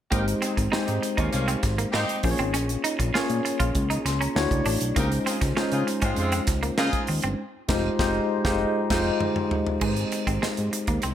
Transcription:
0.11 G#1 G#3 A#3 C4 D#4 G4 A#4 C5, kick, closed hi-hat
0.28 closed hi-hat
0.41 C4 D#4 G#4, closed hi-hat
0.57 G#1, muted clean electric guitar stroke, kick, closed hi-hat
0.71 G#2 G#3 C4 D#4 G4 G#4 C5, snare
0.86 G#2 C4 D#4 G4, closed hi-hat
1.02 muted clean electric guitar stroke, closed hi-hat
1.17 D#2 A#3 C#4 D#4 F4, kick, closed hi-hat
1.32 C2 A#3 C#4 F4, closed hi-hat
1.48 C4, closed hi-hat
1.63 G#1, muted clean electric guitar stroke, kick, snare, closed hi-hat
1.78 A#3, closed hi-hat
1.92 G#2 A#3 C4 D#4 G4, snare
2.09 closed hi-hat
2.23 A#1 A#3 C#4 F4 G#4 C5, muted clean electric guitar stroke, kick, open hi-hat
2.31 C#5
2.38 G#1 C4, closed hi-hat
2.54 A#1 C#4, closed hi-hat
2.69 closed hi-hat
2.84 D#4, closed hi-hat
2.99 A#1, muted clean electric guitar stroke, kick, closed hi-hat
3.14 A#2 A#3 C#4 F4 G#4 C#5, snare
3.30 A#2, closed hi-hat
3.45 muted clean electric guitar stroke, closed hi-hat
3.60 A#1 F4, kick, closed hi-hat
3.75 C#2, kick, closed hi-hat
3.90 D#4, closed hi-hat
4.05 C#2 C6, muted clean electric guitar stroke, snare, closed hi-hat
4.20 C#4 A#5, closed hi-hat
4.35 D2 A3 D4 E4 F#4 C#5 F#5, snare
4.51 C#2 D5, kick, closed hi-hat
4.66 A1 D4, open hi-hat
4.81 B1, closed hi-hat
4.96 C#2 G#3 A#3 C#4 D#4 F4 G4 A#4 C5, kick, closed hi-hat
5.12 closed hi-hat
5.26 C4 D#4 F4 G#4, closed hi-hat
5.41 C#2, muted clean electric guitar stroke, kick, snare, closed hi-hat
5.56 C#3 G#3 C#4 D#4 F4 G#4 C5, snare
5.72 C#3 D#4 F4 G#4, closed hi-hat
5.87 muted clean electric guitar stroke, closed hi-hat
6.02 G#2 G#3 C4 C#4 F4, kick, closed hi-hat
6.16 F2 G#3 C4 F4, closed hi-hat
6.32 C4, closed hi-hat
6.47 C#2, muted clean electric guitar stroke, kick, snare, closed hi-hat
6.63 A#3, closed hi-hat
6.78 C#3 A#3 D#4 F4 G#4, snare
6.93 kick, closed hi-hat
7.07 D#2, muted clean electric guitar stroke, open hi-hat
7.22 G1 C4, closed hi-hat
7.68 F1 G#3 D#4 F4 G4 C5, kick, snare, crash
7.99 F1 G#3 D#4 F4 G4 C5, kick, snare
8.44 F1 G#3 D#4 F4 G4 C5, kick, snare
8.90 F1 G#3 D#4 F4 G4 C5, kick, snare, crash
9.20 mid tom
9.36 mid tom
9.51 floor tom
9.67 floor tom
9.81 G#1 G#3 C4 D#4 G4 B4, kick, crash
9.89 C5
9.97 closed hi-hat
10.12 muted clean electric guitar stroke, closed hi-hat
10.27 G#1 C4, kick, closed hi-hat
10.42 G#2 G#3, snare
10.57 G#2, closed hi-hat
10.73 muted clean electric guitar stroke, closed hi-hat
10.87 D#2 A#3, kick, closed hi-hat
11.02 C2 C4, closed hi-hat

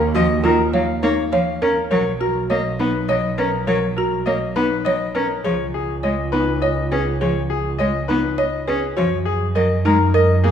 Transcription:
Already playing: D#2
0.14 F3 F#4 D#5
0.44 D#3 F4 A#4
0.73 F#3 C#5 F5
1.03 A#3 D#4 C#5
1.32 F3 C#5 F5
1.62 C#4 A#4
1.91 B1 F#3 A#4 C#5
2.20 F#4 A#4
2.50 A#3 C#5 D#5
2.80 B3 D#4 B4
3.09 F#3 C#5 D#5
3.38 C#4 A#4 B4
3.67 F#3 A#4 C#5
3.97 F#4 A#4
4.26 A#3 C#5 D#5
4.56 B3 D#4 B4
4.85 F#3 C#5 D#5
5.15 C#4 A#4 B4
5.44 C#2 F3 G#4 C#5
5.74 G#4
6.03 G#3 C#5 D#5
6.32 B3 D#4 B4
6.62 C#5 D#5
6.92 C#4 G#4 B4
7.21 F3 G#4 C#5
7.50 G#4
7.79 G#3 C#5 D#5
8.08 B3 D#4 B4
8.38 C#5 D#5
8.68 C#4 G#4 B4
8.97 F#2 F3 F#4 C#5
9.25 G#4
9.55 F#3 A#4 D#5
9.85 G#3 D#4 A#4
10.14 A#4 D#5
10.44 A#3 G#4

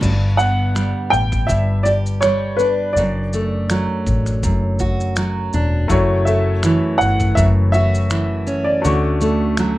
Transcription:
Already playing: D3 F#3 A3 C#4
0.01 G1 G2, kick, crash, shaker
0.37 B3 F#5, shaker
0.75 G3, finger snap, shaker
1.10 A1 G5, shaker
1.32 finger snap, kick, shaker
1.47 G1 G2 E5, kick, shaker
1.83 G4 D5, shaker
2.06 shaker
2.21 G3 C#5, finger snap, shaker
2.57 D4 B4, shaker
2.93 F#1 D5, shaker
2.98 F#2
3.33 A3, shaker
3.70 F#3, finger snap, shaker
4.07 A1, kick, shaker
4.26 finger snap, shaker
4.43 F#1 F#2, kick, shaker
4.79 F#4, kick, shaker
5.00 shaker
5.16 F#3, finger snap, shaker
5.53 E1 D4, shaker
5.88 F#1 F#2 A3 E4 F#4, kick, shaker
5.92 C#5
6.25 A3 E5, shaker
6.63 E3, finger snap, shaker
6.98 G1 F#5, shaker
7.20 finger snap, kick, shaker
7.35 F#1 F#2 E5, kick, shaker
7.72 F#4 E5, shaker
7.95 shaker
8.10 E3, finger snap, shaker
8.47 C#4, shaker
8.64 D5
8.82 D2 D3 A3 D4 F#4, shaker
8.86 C#6
9.21 A3, shaker
9.57 F#3, finger snap, shaker

